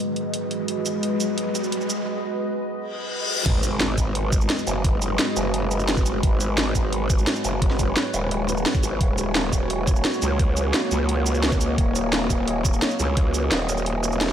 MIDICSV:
0, 0, Header, 1, 7, 480
1, 0, Start_track
1, 0, Key_signature, 5, "minor"
1, 0, Tempo, 346821
1, 945, Time_signature, 4, 2, 24, 8
1, 19827, End_track
2, 0, Start_track
2, 0, Title_t, "Ambient pad"
2, 0, Program_c, 0, 92
2, 0, Note_on_c, 0, 56, 73
2, 0, Note_on_c, 0, 66, 69
2, 0, Note_on_c, 0, 71, 70
2, 0, Note_on_c, 0, 75, 79
2, 4731, Note_off_c, 0, 56, 0
2, 4731, Note_off_c, 0, 66, 0
2, 4731, Note_off_c, 0, 71, 0
2, 4731, Note_off_c, 0, 75, 0
2, 4785, Note_on_c, 0, 71, 69
2, 4786, Note_on_c, 0, 56, 78
2, 4786, Note_on_c, 0, 66, 76
2, 4786, Note_on_c, 0, 75, 85
2, 8588, Note_off_c, 0, 75, 0
2, 8624, Note_on_c, 0, 73, 86
2, 12410, Note_off_c, 0, 56, 0
2, 12410, Note_off_c, 0, 71, 0
2, 12466, Note_on_c, 0, 58, 80
2, 12466, Note_on_c, 0, 75, 83
2, 19827, Note_off_c, 0, 58, 0
2, 19827, Note_off_c, 0, 66, 0
2, 19827, Note_off_c, 0, 73, 0
2, 19827, Note_off_c, 0, 75, 0
2, 19827, End_track
3, 0, Start_track
3, 0, Title_t, "Wobble bass"
3, 0, Program_c, 1, 39
3, 4786, Note_on_c, 1, 32, 96
3, 5486, Note_off_c, 1, 32, 0
3, 5506, Note_on_c, 1, 32, 101
3, 6206, Note_off_c, 1, 32, 0
3, 6466, Note_on_c, 1, 30, 95
3, 7167, Note_off_c, 1, 30, 0
3, 7427, Note_on_c, 1, 30, 102
3, 8607, Note_off_c, 1, 30, 0
3, 8626, Note_on_c, 1, 32, 97
3, 9326, Note_off_c, 1, 32, 0
3, 9345, Note_on_c, 1, 32, 104
3, 10046, Note_off_c, 1, 32, 0
3, 10306, Note_on_c, 1, 30, 96
3, 11006, Note_off_c, 1, 30, 0
3, 11265, Note_on_c, 1, 27, 97
3, 11966, Note_off_c, 1, 27, 0
3, 12227, Note_on_c, 1, 32, 89
3, 12447, Note_off_c, 1, 32, 0
3, 12465, Note_on_c, 1, 27, 91
3, 13166, Note_off_c, 1, 27, 0
3, 13185, Note_on_c, 1, 27, 105
3, 13886, Note_off_c, 1, 27, 0
3, 14147, Note_on_c, 1, 37, 93
3, 14847, Note_off_c, 1, 37, 0
3, 15106, Note_on_c, 1, 37, 98
3, 16286, Note_off_c, 1, 37, 0
3, 16305, Note_on_c, 1, 27, 92
3, 17006, Note_off_c, 1, 27, 0
3, 17026, Note_on_c, 1, 27, 106
3, 17726, Note_off_c, 1, 27, 0
3, 17987, Note_on_c, 1, 37, 92
3, 18687, Note_off_c, 1, 37, 0
3, 18707, Note_on_c, 1, 27, 96
3, 19827, Note_off_c, 1, 27, 0
3, 19827, End_track
4, 0, Start_track
4, 0, Title_t, "Impact"
4, 0, Program_c, 2, 103
4, 4786, Note_on_c, 2, 60, 80
4, 6706, Note_off_c, 2, 60, 0
4, 19827, End_track
5, 0, Start_track
5, 0, Title_t, "Reverse cymbal"
5, 0, Program_c, 3, 119
5, 3826, Note_on_c, 3, 60, 75
5, 4786, Note_off_c, 3, 60, 0
5, 19827, End_track
6, 0, Start_track
6, 0, Title_t, "Riser"
6, 0, Program_c, 4, 103
6, 0, Note_on_c, 4, 60, 79
6, 2866, Note_off_c, 4, 60, 0
6, 19827, End_track
7, 0, Start_track
7, 0, Title_t, "Drums"
7, 225, Note_on_c, 9, 42, 67
7, 363, Note_off_c, 9, 42, 0
7, 464, Note_on_c, 9, 42, 98
7, 603, Note_off_c, 9, 42, 0
7, 705, Note_on_c, 9, 42, 70
7, 843, Note_off_c, 9, 42, 0
7, 944, Note_on_c, 9, 42, 95
7, 1083, Note_off_c, 9, 42, 0
7, 1185, Note_on_c, 9, 42, 64
7, 1185, Note_on_c, 9, 82, 60
7, 1324, Note_off_c, 9, 42, 0
7, 1324, Note_off_c, 9, 82, 0
7, 1426, Note_on_c, 9, 42, 91
7, 1564, Note_off_c, 9, 42, 0
7, 1665, Note_on_c, 9, 42, 69
7, 1665, Note_on_c, 9, 82, 59
7, 1804, Note_off_c, 9, 42, 0
7, 1804, Note_off_c, 9, 82, 0
7, 1905, Note_on_c, 9, 42, 96
7, 2044, Note_off_c, 9, 42, 0
7, 2145, Note_on_c, 9, 42, 65
7, 2145, Note_on_c, 9, 82, 58
7, 2265, Note_off_c, 9, 82, 0
7, 2265, Note_on_c, 9, 82, 28
7, 2283, Note_off_c, 9, 42, 0
7, 2385, Note_on_c, 9, 42, 95
7, 2404, Note_off_c, 9, 82, 0
7, 2505, Note_on_c, 9, 82, 28
7, 2523, Note_off_c, 9, 42, 0
7, 2625, Note_off_c, 9, 82, 0
7, 2625, Note_on_c, 9, 42, 68
7, 2625, Note_on_c, 9, 82, 59
7, 2764, Note_off_c, 9, 42, 0
7, 2764, Note_off_c, 9, 82, 0
7, 4786, Note_on_c, 9, 36, 118
7, 4786, Note_on_c, 9, 42, 103
7, 4786, Note_on_c, 9, 49, 101
7, 4924, Note_off_c, 9, 36, 0
7, 4924, Note_off_c, 9, 42, 0
7, 4924, Note_off_c, 9, 49, 0
7, 5026, Note_on_c, 9, 42, 73
7, 5026, Note_on_c, 9, 82, 62
7, 5164, Note_off_c, 9, 42, 0
7, 5164, Note_off_c, 9, 82, 0
7, 5266, Note_on_c, 9, 38, 118
7, 5266, Note_on_c, 9, 42, 93
7, 5404, Note_off_c, 9, 38, 0
7, 5404, Note_off_c, 9, 42, 0
7, 5505, Note_on_c, 9, 36, 60
7, 5506, Note_on_c, 9, 42, 72
7, 5506, Note_on_c, 9, 82, 62
7, 5644, Note_off_c, 9, 36, 0
7, 5644, Note_off_c, 9, 42, 0
7, 5644, Note_off_c, 9, 82, 0
7, 5745, Note_on_c, 9, 42, 97
7, 5884, Note_off_c, 9, 42, 0
7, 5985, Note_on_c, 9, 36, 113
7, 5986, Note_on_c, 9, 42, 68
7, 5986, Note_on_c, 9, 82, 61
7, 6106, Note_off_c, 9, 82, 0
7, 6106, Note_on_c, 9, 82, 29
7, 6124, Note_off_c, 9, 36, 0
7, 6124, Note_off_c, 9, 42, 0
7, 6225, Note_on_c, 9, 38, 125
7, 6225, Note_on_c, 9, 42, 92
7, 6244, Note_off_c, 9, 82, 0
7, 6346, Note_on_c, 9, 82, 29
7, 6364, Note_off_c, 9, 38, 0
7, 6364, Note_off_c, 9, 42, 0
7, 6466, Note_off_c, 9, 82, 0
7, 6466, Note_on_c, 9, 42, 72
7, 6466, Note_on_c, 9, 82, 60
7, 6604, Note_off_c, 9, 42, 0
7, 6604, Note_off_c, 9, 82, 0
7, 6705, Note_on_c, 9, 36, 127
7, 6705, Note_on_c, 9, 42, 102
7, 6844, Note_off_c, 9, 36, 0
7, 6844, Note_off_c, 9, 42, 0
7, 6945, Note_on_c, 9, 42, 72
7, 6945, Note_on_c, 9, 82, 62
7, 7084, Note_off_c, 9, 42, 0
7, 7084, Note_off_c, 9, 82, 0
7, 7186, Note_on_c, 9, 38, 126
7, 7186, Note_on_c, 9, 42, 102
7, 7324, Note_off_c, 9, 38, 0
7, 7324, Note_off_c, 9, 42, 0
7, 7426, Note_on_c, 9, 42, 73
7, 7426, Note_on_c, 9, 82, 59
7, 7564, Note_off_c, 9, 42, 0
7, 7564, Note_off_c, 9, 82, 0
7, 7666, Note_on_c, 9, 42, 94
7, 7804, Note_off_c, 9, 42, 0
7, 7905, Note_on_c, 9, 42, 67
7, 7905, Note_on_c, 9, 82, 57
7, 8025, Note_off_c, 9, 82, 0
7, 8025, Note_on_c, 9, 82, 29
7, 8044, Note_off_c, 9, 42, 0
7, 8145, Note_on_c, 9, 38, 118
7, 8145, Note_on_c, 9, 42, 98
7, 8163, Note_off_c, 9, 82, 0
7, 8266, Note_on_c, 9, 36, 109
7, 8266, Note_on_c, 9, 82, 29
7, 8283, Note_off_c, 9, 38, 0
7, 8283, Note_off_c, 9, 42, 0
7, 8386, Note_off_c, 9, 82, 0
7, 8386, Note_on_c, 9, 42, 68
7, 8386, Note_on_c, 9, 82, 63
7, 8404, Note_off_c, 9, 36, 0
7, 8524, Note_off_c, 9, 42, 0
7, 8524, Note_off_c, 9, 82, 0
7, 8626, Note_on_c, 9, 36, 124
7, 8626, Note_on_c, 9, 42, 100
7, 8764, Note_off_c, 9, 36, 0
7, 8764, Note_off_c, 9, 42, 0
7, 8866, Note_on_c, 9, 42, 70
7, 8866, Note_on_c, 9, 82, 56
7, 9004, Note_off_c, 9, 42, 0
7, 9004, Note_off_c, 9, 82, 0
7, 9105, Note_on_c, 9, 38, 127
7, 9105, Note_on_c, 9, 42, 98
7, 9243, Note_off_c, 9, 38, 0
7, 9243, Note_off_c, 9, 42, 0
7, 9345, Note_on_c, 9, 36, 59
7, 9345, Note_on_c, 9, 42, 68
7, 9345, Note_on_c, 9, 82, 60
7, 9483, Note_off_c, 9, 36, 0
7, 9483, Note_off_c, 9, 42, 0
7, 9483, Note_off_c, 9, 82, 0
7, 9585, Note_on_c, 9, 42, 95
7, 9724, Note_off_c, 9, 42, 0
7, 9825, Note_on_c, 9, 36, 121
7, 9825, Note_on_c, 9, 42, 68
7, 9825, Note_on_c, 9, 82, 57
7, 9945, Note_off_c, 9, 82, 0
7, 9945, Note_on_c, 9, 82, 27
7, 9963, Note_off_c, 9, 42, 0
7, 9964, Note_off_c, 9, 36, 0
7, 10065, Note_on_c, 9, 38, 125
7, 10065, Note_on_c, 9, 42, 97
7, 10084, Note_off_c, 9, 82, 0
7, 10185, Note_on_c, 9, 82, 29
7, 10203, Note_off_c, 9, 38, 0
7, 10203, Note_off_c, 9, 42, 0
7, 10305, Note_off_c, 9, 82, 0
7, 10305, Note_on_c, 9, 42, 67
7, 10305, Note_on_c, 9, 82, 58
7, 10444, Note_off_c, 9, 42, 0
7, 10444, Note_off_c, 9, 82, 0
7, 10545, Note_on_c, 9, 36, 124
7, 10545, Note_on_c, 9, 42, 91
7, 10665, Note_on_c, 9, 38, 39
7, 10683, Note_off_c, 9, 42, 0
7, 10684, Note_off_c, 9, 36, 0
7, 10785, Note_on_c, 9, 36, 67
7, 10786, Note_on_c, 9, 42, 65
7, 10786, Note_on_c, 9, 82, 57
7, 10803, Note_off_c, 9, 38, 0
7, 10923, Note_off_c, 9, 36, 0
7, 10924, Note_off_c, 9, 42, 0
7, 10924, Note_off_c, 9, 82, 0
7, 11025, Note_on_c, 9, 38, 119
7, 11025, Note_on_c, 9, 42, 91
7, 11163, Note_off_c, 9, 38, 0
7, 11163, Note_off_c, 9, 42, 0
7, 11265, Note_on_c, 9, 42, 65
7, 11265, Note_on_c, 9, 82, 53
7, 11404, Note_off_c, 9, 42, 0
7, 11404, Note_off_c, 9, 82, 0
7, 11505, Note_on_c, 9, 42, 88
7, 11643, Note_off_c, 9, 42, 0
7, 11746, Note_on_c, 9, 42, 66
7, 11746, Note_on_c, 9, 82, 56
7, 11866, Note_off_c, 9, 82, 0
7, 11866, Note_on_c, 9, 82, 27
7, 11884, Note_off_c, 9, 42, 0
7, 11985, Note_on_c, 9, 38, 124
7, 11985, Note_on_c, 9, 42, 92
7, 12004, Note_off_c, 9, 82, 0
7, 12105, Note_on_c, 9, 36, 111
7, 12105, Note_on_c, 9, 82, 27
7, 12123, Note_off_c, 9, 38, 0
7, 12123, Note_off_c, 9, 42, 0
7, 12225, Note_off_c, 9, 82, 0
7, 12225, Note_on_c, 9, 42, 67
7, 12225, Note_on_c, 9, 82, 59
7, 12244, Note_off_c, 9, 36, 0
7, 12364, Note_off_c, 9, 42, 0
7, 12364, Note_off_c, 9, 82, 0
7, 12465, Note_on_c, 9, 36, 114
7, 12466, Note_on_c, 9, 42, 89
7, 12604, Note_off_c, 9, 36, 0
7, 12604, Note_off_c, 9, 42, 0
7, 12705, Note_on_c, 9, 42, 64
7, 12705, Note_on_c, 9, 82, 58
7, 12844, Note_off_c, 9, 42, 0
7, 12844, Note_off_c, 9, 82, 0
7, 12945, Note_on_c, 9, 38, 118
7, 12945, Note_on_c, 9, 42, 94
7, 13083, Note_off_c, 9, 38, 0
7, 13083, Note_off_c, 9, 42, 0
7, 13185, Note_on_c, 9, 36, 60
7, 13185, Note_on_c, 9, 42, 63
7, 13185, Note_on_c, 9, 82, 55
7, 13324, Note_off_c, 9, 36, 0
7, 13324, Note_off_c, 9, 42, 0
7, 13324, Note_off_c, 9, 82, 0
7, 13425, Note_on_c, 9, 42, 90
7, 13563, Note_off_c, 9, 42, 0
7, 13665, Note_on_c, 9, 36, 110
7, 13665, Note_on_c, 9, 42, 63
7, 13665, Note_on_c, 9, 82, 54
7, 13786, Note_off_c, 9, 82, 0
7, 13786, Note_on_c, 9, 82, 27
7, 13804, Note_off_c, 9, 36, 0
7, 13804, Note_off_c, 9, 42, 0
7, 13906, Note_on_c, 9, 38, 115
7, 13906, Note_on_c, 9, 42, 91
7, 13924, Note_off_c, 9, 82, 0
7, 14026, Note_on_c, 9, 82, 27
7, 14044, Note_off_c, 9, 38, 0
7, 14044, Note_off_c, 9, 42, 0
7, 14146, Note_off_c, 9, 82, 0
7, 14146, Note_on_c, 9, 42, 64
7, 14146, Note_on_c, 9, 82, 58
7, 14285, Note_off_c, 9, 42, 0
7, 14285, Note_off_c, 9, 82, 0
7, 14385, Note_on_c, 9, 36, 111
7, 14386, Note_on_c, 9, 42, 86
7, 14524, Note_off_c, 9, 36, 0
7, 14524, Note_off_c, 9, 42, 0
7, 14626, Note_on_c, 9, 42, 63
7, 14626, Note_on_c, 9, 82, 57
7, 14764, Note_off_c, 9, 42, 0
7, 14764, Note_off_c, 9, 82, 0
7, 14866, Note_on_c, 9, 38, 120
7, 14866, Note_on_c, 9, 42, 88
7, 15004, Note_off_c, 9, 38, 0
7, 15004, Note_off_c, 9, 42, 0
7, 15106, Note_on_c, 9, 42, 61
7, 15106, Note_on_c, 9, 82, 59
7, 15244, Note_off_c, 9, 42, 0
7, 15244, Note_off_c, 9, 82, 0
7, 15346, Note_on_c, 9, 42, 90
7, 15484, Note_off_c, 9, 42, 0
7, 15586, Note_on_c, 9, 42, 66
7, 15586, Note_on_c, 9, 82, 59
7, 15706, Note_off_c, 9, 82, 0
7, 15706, Note_on_c, 9, 82, 28
7, 15725, Note_off_c, 9, 42, 0
7, 15826, Note_on_c, 9, 38, 123
7, 15826, Note_on_c, 9, 42, 84
7, 15844, Note_off_c, 9, 82, 0
7, 15945, Note_on_c, 9, 36, 98
7, 15946, Note_on_c, 9, 82, 27
7, 15964, Note_off_c, 9, 38, 0
7, 15964, Note_off_c, 9, 42, 0
7, 16066, Note_off_c, 9, 82, 0
7, 16066, Note_on_c, 9, 42, 63
7, 16066, Note_on_c, 9, 82, 60
7, 16084, Note_off_c, 9, 36, 0
7, 16205, Note_off_c, 9, 42, 0
7, 16205, Note_off_c, 9, 82, 0
7, 16305, Note_on_c, 9, 36, 116
7, 16306, Note_on_c, 9, 42, 93
7, 16444, Note_off_c, 9, 36, 0
7, 16445, Note_off_c, 9, 42, 0
7, 16546, Note_on_c, 9, 42, 66
7, 16546, Note_on_c, 9, 82, 61
7, 16684, Note_off_c, 9, 42, 0
7, 16684, Note_off_c, 9, 82, 0
7, 16786, Note_on_c, 9, 38, 117
7, 16786, Note_on_c, 9, 42, 91
7, 16924, Note_off_c, 9, 38, 0
7, 16924, Note_off_c, 9, 42, 0
7, 17025, Note_on_c, 9, 36, 56
7, 17026, Note_on_c, 9, 42, 63
7, 17026, Note_on_c, 9, 82, 61
7, 17164, Note_off_c, 9, 36, 0
7, 17164, Note_off_c, 9, 42, 0
7, 17164, Note_off_c, 9, 82, 0
7, 17266, Note_on_c, 9, 42, 96
7, 17404, Note_off_c, 9, 42, 0
7, 17506, Note_on_c, 9, 36, 106
7, 17506, Note_on_c, 9, 42, 61
7, 17506, Note_on_c, 9, 82, 63
7, 17626, Note_off_c, 9, 82, 0
7, 17626, Note_on_c, 9, 82, 30
7, 17644, Note_off_c, 9, 36, 0
7, 17645, Note_off_c, 9, 42, 0
7, 17746, Note_on_c, 9, 38, 122
7, 17746, Note_on_c, 9, 42, 93
7, 17765, Note_off_c, 9, 82, 0
7, 17865, Note_on_c, 9, 82, 30
7, 17884, Note_off_c, 9, 38, 0
7, 17884, Note_off_c, 9, 42, 0
7, 17986, Note_off_c, 9, 82, 0
7, 17986, Note_on_c, 9, 42, 63
7, 17986, Note_on_c, 9, 82, 64
7, 18124, Note_off_c, 9, 42, 0
7, 18124, Note_off_c, 9, 82, 0
7, 18225, Note_on_c, 9, 42, 95
7, 18226, Note_on_c, 9, 36, 115
7, 18364, Note_off_c, 9, 36, 0
7, 18364, Note_off_c, 9, 42, 0
7, 18466, Note_on_c, 9, 42, 68
7, 18466, Note_on_c, 9, 82, 60
7, 18604, Note_off_c, 9, 42, 0
7, 18604, Note_off_c, 9, 82, 0
7, 18706, Note_on_c, 9, 38, 117
7, 18706, Note_on_c, 9, 42, 97
7, 18844, Note_off_c, 9, 38, 0
7, 18844, Note_off_c, 9, 42, 0
7, 18946, Note_on_c, 9, 42, 65
7, 18946, Note_on_c, 9, 82, 62
7, 19066, Note_off_c, 9, 82, 0
7, 19066, Note_on_c, 9, 82, 29
7, 19085, Note_off_c, 9, 42, 0
7, 19186, Note_on_c, 9, 42, 94
7, 19205, Note_off_c, 9, 82, 0
7, 19324, Note_off_c, 9, 42, 0
7, 19426, Note_on_c, 9, 42, 67
7, 19426, Note_on_c, 9, 82, 59
7, 19546, Note_off_c, 9, 82, 0
7, 19546, Note_on_c, 9, 82, 31
7, 19564, Note_off_c, 9, 42, 0
7, 19666, Note_on_c, 9, 38, 115
7, 19666, Note_on_c, 9, 42, 93
7, 19685, Note_off_c, 9, 82, 0
7, 19786, Note_off_c, 9, 38, 0
7, 19786, Note_on_c, 9, 38, 54
7, 19786, Note_on_c, 9, 82, 29
7, 19805, Note_off_c, 9, 42, 0
7, 19827, Note_off_c, 9, 38, 0
7, 19827, Note_off_c, 9, 82, 0
7, 19827, End_track
0, 0, End_of_file